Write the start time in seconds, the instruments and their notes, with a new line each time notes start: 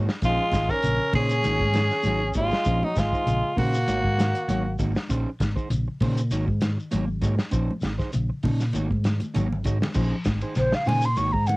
Already playing: clean electric guitar G#3
0.09 muted clean electric guitar stroke, snare, shekere
0.22 fingered electric bass A#1, clean electric guitar F3 C#4 D#4 G#4 C5, tenor saxophone F4, kick, snare, closed hi-hat, shekere
0.26 trombone G#3
0.51 fingered electric bass G#1, clean electric guitar D#3, muted clean electric guitar stroke, kick, snare, closed hi-hat, high conga, low conga, shekere
0.69 trombone C#4, clean electric guitar D#4 G#4 C5, tenor saxophone A#4, muted fingered electric bass stroke, kick, snare, shekere
0.83 fingered electric bass A#1, clean electric guitar C#3, muted clean electric guitar stroke, closed hi-hat, shekere
0.99 muted clean electric guitar stroke
1.13 fingered electric bass A#2, clean electric guitar C#3 C#4 D#4 C5, trombone C#4, tenor saxophone G#4, muted clean electric guitar stroke, kick, open hi-hat, high conga, low conga, shekere
1.29 closed hi-hat, shekere
1.43 fingered electric bass G#1, clean electric guitar D#3 A#3 D#4 F#4 C#5, closed hi-hat, high conga, shekere
1.60 fingered electric bass G#2, muted clean electric guitar stroke, kick, high conga
1.74 clean electric guitar D#3, muted clean electric guitar stroke, snare, closed hi-hat, high conga, shekere
1.90 muted clean electric guitar stroke, snare, shekere
2.03 fingered electric bass G#1, clean electric guitar F#3 D#4 F#4 C#5, muted clean electric guitar stroke, closed hi-hat, high conga, shekere
2.34 fingered electric bass G#1, trombone G#3, clean electric guitar G#3 A#3 D#4 F#4 C#5, tenor saxophone F4, kick, closed hi-hat, low conga, shekere
2.51 muted clean electric guitar stroke, snare, shekere
2.65 fingered electric bass A#1, clean electric guitar F3 C#4 D#4 G#4 C5, kick, closed hi-hat, shekere
2.83 trombone F#3, tenor saxophone D#4, high conga
2.95 fingered electric bass G#1, clean electric guitar D#3, trombone G#3, tenor saxophone F4, muted clean electric guitar stroke, kick, snare, closed hi-hat, high conga, low conga, shekere
3.13 clean electric guitar D#4 G#4 C5, muted fingered electric bass stroke, kick, shekere
3.26 fingered electric bass A#1, clean electric guitar C#3, muted clean electric guitar stroke, closed hi-hat, shekere
3.44 muted clean electric guitar stroke
3.56 fingered electric bass A#2, clean electric guitar C#3 C#4 D#4 G#4 C5, trombone A#3, tenor saxophone F#4, kick, open hi-hat, high conga, low conga, shekere
3.74 shekere
3.87 fingered electric bass G#1, clean electric guitar D#3 A#3 D#4 F#4 C#5, closed hi-hat, high conga, shekere
4.04 fingered electric bass G#2, muted clean electric guitar stroke, kick
4.18 clean electric guitar D#3, muted clean electric guitar stroke, snare, closed hi-hat, high conga, shekere
4.35 muted clean electric guitar stroke, closed hi-hat, shekere
4.48 fingered electric bass G#1, clean electric guitar F#3 A#3 D#4 C#5, closed hi-hat, high conga, shekere
4.66 muted clean electric guitar stroke
4.79 fingered electric bass G#1, clean electric guitar G#3 A#3 D#4 F#4, muted clean electric guitar stroke, kick, closed hi-hat, low conga, shekere
4.95 muted clean electric guitar stroke, snare, shekere
5.09 fingered electric bass A#1, clean electric guitar C#4 D#4 G#4 C5, muted clean electric guitar stroke, kick, closed hi-hat, shekere
5.40 fingered electric bass G#1, clean electric guitar D#3, muted clean electric guitar stroke, kick, snare, closed hi-hat, high conga, low conga, shekere
5.56 clean electric guitar D#4 G#4 C5, muted fingered electric bass stroke, kick, shekere
5.70 fingered electric bass A#1, clean electric guitar C#3, muted clean electric guitar stroke, closed hi-hat, shekere
5.88 muted clean electric guitar stroke
6.00 fingered electric bass A#2, clean electric guitar C#3 C#4 D#4 G#4 C5, kick, open hi-hat, high conga, low conga, shekere
6.17 closed hi-hat, shekere
6.31 fingered electric bass G#1, clean electric guitar D#3 A#3 D#4 F#4 C#5, closed hi-hat, shekere
6.48 fingered electric bass G#2, muted clean electric guitar stroke, kick
6.61 clean electric guitar D#3, muted clean electric guitar stroke, snare, closed hi-hat, high conga, shekere
6.78 muted clean electric guitar stroke, shekere
6.91 fingered electric bass G#1, clean electric guitar F#3 A#3 D#4 F#4 C#5, closed hi-hat, high conga, shekere
7.08 muted clean electric guitar stroke
7.21 fingered electric bass G#2, clean electric guitar G#3 A#3 D#4 F#4 C#5, kick, closed hi-hat, low conga, shekere
7.38 muted clean electric guitar stroke, snare, shekere
7.51 fingered electric bass A#1, clean electric guitar F3 C#4 D#4 C5, muted clean electric guitar stroke, kick, closed hi-hat, shekere
7.71 high conga
7.81 fingered electric bass G#1, clean electric guitar D#3, muted clean electric guitar stroke, snare, closed hi-hat, high conga, low conga, shekere
7.98 clean electric guitar D#4 G#4 C5, muted fingered electric bass stroke, kick, snare, shekere
8.13 fingered electric bass A#1, clean electric guitar C#3, muted clean electric guitar stroke, closed hi-hat, shekere
8.29 muted clean electric guitar stroke
8.43 fingered electric bass A#2, clean electric guitar C#3 C#4 D#4, kick, open hi-hat, high conga, low conga, shekere
8.60 snare, shekere
8.73 fingered electric bass G#1, clean electric guitar D#3 A#3 D#4 F#4 C#5, closed hi-hat, high conga, shekere
8.90 fingered electric bass G#2, muted clean electric guitar stroke, kick, high conga
9.04 clean electric guitar D#3, muted clean electric guitar stroke, snare, closed hi-hat, high conga, shekere
9.20 muted clean electric guitar stroke, closed hi-hat, high conga, shekere
9.34 fingered electric bass G#1, clean electric guitar F#3 A#3 D#4 F#4 C#5, closed hi-hat, low conga, shekere
9.50 muted clean electric guitar stroke, low conga
9.64 fingered electric bass G#2, clean electric guitar G#3 D#4 F#4 C#5, muted clean electric guitar stroke, kick, closed hi-hat, low conga, shekere
9.82 snare, low conga, shekere
9.94 fingered electric bass A#1, clean electric guitar F3 C#4 D#4 G#4 C5, kick, crash, shekere
10.25 fingered electric bass G#1, clean electric guitar D#3, muted clean electric guitar stroke, kick, snare, ride bell, high conga, shekere
10.41 clean electric guitar D#4 G#4 C5, muted fingered electric bass stroke, ride bell, shekere
10.55 fingered electric bass A#1, clean electric guitar C#3, flute C5, muted clean electric guitar stroke, snare, ride bell, shekere
10.72 flute F5, muted clean electric guitar stroke, snare
10.85 fingered electric bass A#2, clean electric guitar C#3 C#4 D#4 G#4 C5, flute G#5, snare, open hi-hat, shekere
10.89 high conga, low conga
11.02 flute C6, shekere
11.16 fingered electric bass G#1, clean electric guitar D#3 A#3 D#4 F#4 C#5, flute C#6, ride bell, shekere
11.33 fingered electric bass G#2, flute A#5, muted clean electric guitar stroke, kick
11.47 clean electric guitar D#3, flute F#5, muted clean electric guitar stroke, ride bell, high conga, shekere